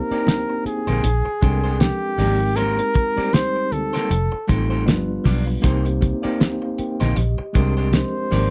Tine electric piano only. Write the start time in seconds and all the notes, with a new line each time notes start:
Already playing: A#3 C4 D#4 G4 C5
0.10 A#3 C4 D4 C5 G5
0.19 D#4
1.42 G#3 C4 D4 A4 G5
1.52 A#4
2.18 G#3 C4 D#4 G4 A#4
3.16 G3 C4 D#4 G4 C5
4.48 G3 C4 D#4 F4 A4
4.86 G3 B3 D4 F4 A#4
4.96 B4
5.62 A#3 C4 D#4 G4 C5
6.22 A#3 C4 D#4 G4
6.26 C5
6.62 F5
6.78 A#4 G5
7.00 G4 D#5
7.53 G#3 C4 D4 G4 A#4
8.31 G#3 C4 D#4 G4 A#4